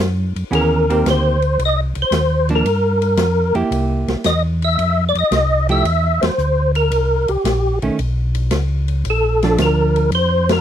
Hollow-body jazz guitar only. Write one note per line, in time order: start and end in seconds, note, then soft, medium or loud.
0.51 0.85 E3 medium
0.51 0.85 B3 medium
0.51 0.85 C#4 medium
0.51 0.86 G#4 medium
0.90 1.36 D#3 medium
0.90 1.36 A#3 medium
0.90 1.36 C4 medium
0.90 1.36 G4 medium
2.49 2.64 F3 medium
2.49 2.65 A#3 medium
2.49 2.65 D4 medium
3.54 4.22 A#3 medium
3.54 4.22 E4 medium
3.54 4.22 G4 medium
5.69 5.84 F3 medium
5.69 5.85 A3 medium
5.69 5.85 E4 medium
5.69 5.85 G4 medium
7.82 7.98 D#3 medium
7.82 7.98 A3 medium
7.82 7.98 C#4 medium
9.44 10.10 F3 medium
9.44 10.11 D4 medium